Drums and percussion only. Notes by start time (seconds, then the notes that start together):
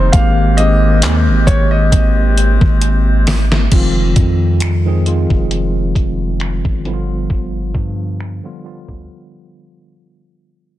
0.13 kick, closed hi-hat
0.58 closed hi-hat
1.02 clap, closed hi-hat
1.47 kick, closed hi-hat
1.92 kick, closed hi-hat
2.38 closed hi-hat
2.61 kick
2.82 closed hi-hat
3.27 snare, open hi-hat
3.52 snare
3.72 kick, closed hi-hat, crash
4.16 kick, closed hi-hat
4.60 finger snap, closed hi-hat
5.06 closed hi-hat
5.30 kick
5.51 closed hi-hat
5.95 kick, closed hi-hat
6.40 finger snap, closed hi-hat
6.65 kick
6.85 closed hi-hat
7.30 kick
7.74 kick
8.20 finger snap
8.88 kick